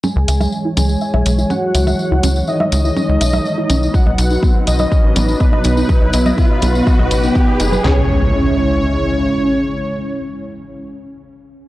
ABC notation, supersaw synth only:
X:1
M:4/4
L:1/8
Q:1/4=123
K:C#m
V:1 name="Supersaw synth"
g3 g3 f2- | f2 d6 | f3 d3 B2- | B2 B6 |
c8- | c8 |]